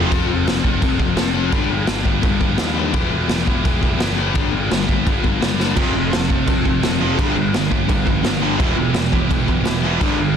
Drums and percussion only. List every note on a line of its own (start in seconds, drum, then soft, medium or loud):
0.12 kick loud
0.12 crash medium
0.47 snare loud
0.47 crash medium
0.64 kick medium
0.82 kick loud
0.82 crash medium
1.00 kick medium
1.17 snare loud
1.17 crash medium
1.52 kick loud
1.52 crash medium
1.87 snare loud
1.87 crash medium
2.05 kick medium
2.23 kick loud
2.23 crash medium
2.41 kick medium
2.58 snare loud
2.58 crash medium
2.94 kick loud
2.94 crash medium
3.29 snare loud
3.29 crash medium
3.47 kick medium
3.65 kick loud
3.65 crash medium
3.83 kick medium
4.00 snare loud
4.00 crash medium
4.35 kick loud
4.35 crash medium
4.71 snare loud
4.71 crash medium
4.89 kick medium
5.07 kick loud
5.07 crash medium
5.24 kick medium
5.42 snare loud
5.42 crash medium
5.60 snare medium
5.77 kick loud
5.77 crash medium
6.13 snare loud
6.13 crash medium
6.30 kick medium
6.48 kick loud
6.48 crash medium
6.65 kick medium
6.83 snare loud
6.83 crash medium
7.19 kick loud
7.19 crash medium
7.54 snare loud
7.54 crash medium
7.72 kick medium
7.89 kick loud
7.89 crash medium
8.07 kick medium
8.24 snare loud
8.24 crash medium
8.60 kick loud
8.60 crash medium
8.94 snare loud
8.94 crash medium
9.13 kick medium
9.31 kick loud
9.31 crash medium
9.48 kick medium
9.65 snare loud
9.65 crash medium
10.01 kick loud
10.01 crash medium